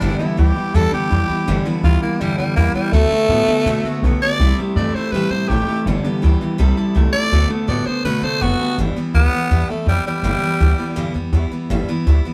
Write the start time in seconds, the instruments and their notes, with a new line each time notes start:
Already playing: tenor saxophone D4
0.01 upright bass G1, steel-string acoustic guitar G2 D3 E3 G3 B3 E4
0.19 clean electric guitar G2 D3, steel-string acoustic guitar E3 G3 B3 E4, tenor saxophone E4, muted upright bass stroke
0.37 upright bass D2, clean electric guitar G2, steel-string acoustic guitar E3 G3 B3 E4, tenor saxophone G4
0.55 clean electric guitar G2, steel-string acoustic guitar E3 G3 B3 E4
0.74 upright bass E2, steel-string acoustic guitar G2 D3 E3 G3 B3 E4, tenor saxophone A4
0.92 clean electric guitar G2 D3, steel-string acoustic guitar E3 G3 B3 E4, tenor saxophone G4, muted upright bass stroke
1.10 upright bass F2, clean electric guitar G2, steel-string acoustic guitar E3 G3 B3 E4
1.28 clean electric guitar G2, steel-string acoustic guitar E3 G3 B3 E4, muted upright bass stroke
1.48 upright bass G1, steel-string acoustic guitar G2 D3 E3 G3 B3 E4
1.65 clean electric guitar G2 D3, steel-string acoustic guitar E3 G3 B3 E4
1.83 upright bass D2, clean electric guitar G2, steel-string acoustic guitar E3 G3 B3 E4, tenor saxophone F4
2.02 clean electric guitar G2, steel-string acoustic guitar E3 G3 B3 E4, tenor saxophone A#3
2.20 upright bass E2, steel-string acoustic guitar G2 D3 E3 G3 B3 E4, tenor saxophone G3
2.37 upright bass F2, clean electric guitar G2 D3, steel-string acoustic guitar E3 G3 B3 E4, tenor saxophone G3
2.56 upright bass E2, clean electric guitar G2, steel-string acoustic guitar E3 G3 B3 E4, tenor saxophone A#3
2.74 clean electric guitar G2, steel-string acoustic guitar E3 G3 B3 E4, tenor saxophone G3, muted upright bass stroke
2.92 upright bass D2, steel-string acoustic guitar D3 F#3 A3 B3 F#4, tenor saxophone A3
3.11 clean electric guitar D3, steel-string acoustic guitar A3 B3 F#4
3.29 upright bass A2, clean electric guitar D3, steel-string acoustic guitar F#3 A3 B3 F#4
3.47 clean electric guitar D3, steel-string acoustic guitar A3 B3 F#4, muted upright bass stroke
3.66 upright bass B2, steel-string acoustic guitar D3 F#3 A3 B3 F#4
3.84 clean electric guitar D3, steel-string acoustic guitar A3 B3 F#4, muted upright bass stroke
4.02 upright bass B1, clean electric guitar D3, steel-string acoustic guitar F#3 A3 B3 F#4
4.22 clean electric guitar D3, steel-string acoustic guitar A3 B3 F#4, tenor saxophone D5
4.39 upright bass C2, steel-string acoustic guitar C3 E3 A3 E4 G4, clean electric guitar G3
4.59 clean electric guitar C3 G3, steel-string acoustic guitar A3 E4 G4
4.76 upright bass G2, clean electric guitar C3, steel-string acoustic guitar E3 A3 E4 G4, tenor saxophone D5
4.94 clean electric guitar C3, steel-string acoustic guitar A3 E4 G4, tenor saxophone C5, muted upright bass stroke
5.12 upright bass A2, steel-string acoustic guitar C3 E3 A3 E4, clean electric guitar G3, tenor saxophone B4
5.16 steel-string acoustic guitar G4
5.30 upright bass A2, clean electric guitar C3 G3, steel-string acoustic guitar E4 G4, tenor saxophone C5
5.35 steel-string acoustic guitar A3
5.48 upright bass A1, clean electric guitar C3, steel-string acoustic guitar E3 A3 E4, tenor saxophone G4
5.52 steel-string acoustic guitar G4
5.67 clean electric guitar C3, steel-string acoustic guitar A3 E4 G4, muted upright bass stroke
5.86 upright bass G1, steel-string acoustic guitar G2 D3 E3 G3 B3 G4
6.03 clean electric guitar G2 D3, steel-string acoustic guitar E3 G3 B3 G4
6.22 upright bass D2, clean electric guitar G2, steel-string acoustic guitar E3 G3 B3 G4
6.41 clean electric guitar G2, steel-string acoustic guitar E3 G3 B3 G4
6.58 upright bass C2, steel-string acoustic guitar C3 E3 G3 E4 A4
6.77 clean electric guitar C3, steel-string acoustic guitar G3 E4 A4
6.95 upright bass C2, clean electric guitar C3 A3, steel-string acoustic guitar E3 G3 E4 A4
7.13 clean electric guitar C3 A3, steel-string acoustic guitar G3 E4 A4, tenor saxophone D5
7.32 upright bass D2, steel-string acoustic guitar D3 F#3 A3 B3 A4
7.50 clean electric guitar D3, steel-string acoustic guitar A3 B3 A4
7.67 upright bass A2, clean electric guitar D3, steel-string acoustic guitar F#3 A3 B3 A4, tenor saxophone D5
7.86 clean electric guitar D3, steel-string acoustic guitar A3 B3 A4, tenor saxophone C5, muted upright bass stroke
8.04 upright bass B2, steel-string acoustic guitar D3 F#3 A3 B3 A4, tenor saxophone B4
8.22 upright bass C3, clean electric guitar D3, steel-string acoustic guitar A3 B3 A4, tenor saxophone C5
8.41 upright bass F#1, clean electric guitar D3, steel-string acoustic guitar F#3 A3 B3 A4, tenor saxophone F#4
8.59 clean electric guitar D3, steel-string acoustic guitar A3 B3 A4, muted upright bass stroke
8.78 upright bass G1, steel-string acoustic guitar G2 D3 E3 G3 B3 E4
8.96 steel-string acoustic guitar E3 G3 B3 E4, muted upright bass stroke
9.14 upright bass D2, steel-string acoustic guitar E3 G3 B3 E4, tenor saxophone B3
9.33 steel-string acoustic guitar E3 G3 B3 E4
9.51 upright bass E2, steel-string acoustic guitar G2 D3 E3 G3 B3 E4
9.69 steel-string acoustic guitar E3 G3 B3 E4, tenor saxophone A3, muted upright bass stroke
9.87 upright bass F2, steel-string acoustic guitar E3 G3 B3 E4, tenor saxophone G3
10.05 steel-string acoustic guitar E3 G3 B3 E4, tenor saxophone G3, muted upright bass stroke
10.23 upright bass G1, steel-string acoustic guitar G2 D3 E3 G3 B3 E4
10.42 steel-string acoustic guitar E3 G3 B3 E4, muted upright bass stroke
10.59 upright bass D2, steel-string acoustic guitar E3 G3 B3 E4
10.78 steel-string acoustic guitar E3 G3 B3 E4
10.96 upright bass E2, steel-string acoustic guitar G2 D3 E3 G3 B3 E4
11.14 upright bass F2, steel-string acoustic guitar E3 G3 B3 E4
11.32 upright bass E2, steel-string acoustic guitar E3 G3 B3 E4
11.51 steel-string acoustic guitar E3 G3 B3 E4, muted upright bass stroke
11.70 upright bass G1, steel-string acoustic guitar G2 D3 E3 G3 B3 E4
11.88 steel-string acoustic guitar E3 G3 B3 E4, muted upright bass stroke
12.07 upright bass D2, steel-string acoustic guitar E3 G3 B3 E4
12.25 steel-string acoustic guitar E3 G3 B3 E4, muted upright bass stroke